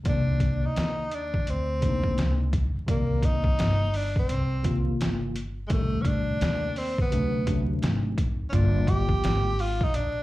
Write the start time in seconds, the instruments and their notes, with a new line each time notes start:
0.04 upright bass C2, tine electric piano C3 D#3 A#3 D5, kick, closed hi-hat
0.09 tenor saxophone D4
0.40 kick, closed hi-hat
0.64 tenor saxophone D#4, muted upright bass stroke
0.76 upright bass D#2, snare, closed hi-hat
1.11 tenor saxophone D4, closed hi-hat
1.34 kick
1.47 upright bass D2, tenor saxophone C4, closed hi-hat
1.81 tine electric piano C3 D3 A#3 D4, kick, closed hi-hat
1.88 tine electric piano D#4
2.04 kick
2.18 upright bass C#2, snare, closed hi-hat
2.53 kick, closed hi-hat
2.76 muted upright bass stroke
2.87 upright bass C2, tine electric piano C3 D#3 A#3 D5, tenor saxophone A#3, kick, closed hi-hat
3.22 tenor saxophone D#4, kick, closed hi-hat
3.44 kick
3.59 upright bass G1, snare, closed hi-hat
3.94 tenor saxophone D4, open hi-hat
4.16 tenor saxophone C4, kick
4.29 upright bass C2, closed hi-hat
4.63 tine electric piano C3 D#3 A#3 F4, kick, closed hi-hat
5.00 upright bass G1, snare, closed hi-hat
5.36 closed hi-hat
5.68 upright bass A1, tine electric piano A#2 G3 A3, tenor saxophone G#3, kick, closed hi-hat
5.72 tine electric piano D#3, tenor saxophone A3
5.76 tine electric piano C3
6.02 tenor saxophone C#4, kick, closed hi-hat
6.07 tenor saxophone D4
6.41 upright bass D#2, snare, closed hi-hat
6.76 tenor saxophone C4, open hi-hat
6.98 tenor saxophone B3, kick
7.10 upright bass D2, tine electric piano C3 F#3 A3 D4, closed hi-hat
7.46 tine electric piano C3 F#3 A3 D4, kick, closed hi-hat
7.82 upright bass G#1, snare, closed hi-hat
8.18 kick, closed hi-hat
8.49 upright bass G1, tine electric piano D3 G3 A#3, tenor saxophone C#4, kick, closed hi-hat
8.54 tenor saxophone D4, tine electric piano F4
8.87 tenor saxophone G4, kick, closed hi-hat
9.09 kick
9.24 upright bass G#1, snare, closed hi-hat
9.59 tenor saxophone F4, open hi-hat
9.81 tenor saxophone D#4, muted upright bass stroke, kick
9.94 upright bass A#1, tenor saxophone D4, closed hi-hat